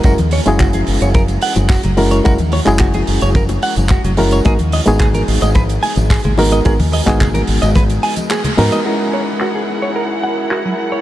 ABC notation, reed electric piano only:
X:1
M:4/4
L:1/16
Q:1/4=109
K:F#mix
V:1 name="Reed electric piano"
[G,CEFA] z2 [G,CEFG]8- [G,CEFG]3 [G,CEFA]2 | [G,CEFA] z2 [G,CEFG]8- [G,CEFG]3 [G,CEFA]2 | [G,B,DFA] z2 [G,B,DFG]8- [G,B,DFG]3 [G,B,DFA]2 | [G,B,DFA] z2 [G,B,DFG]8- [G,B,DFG]3 [G,B,DFA]2 |
[G,CEFA]16 |]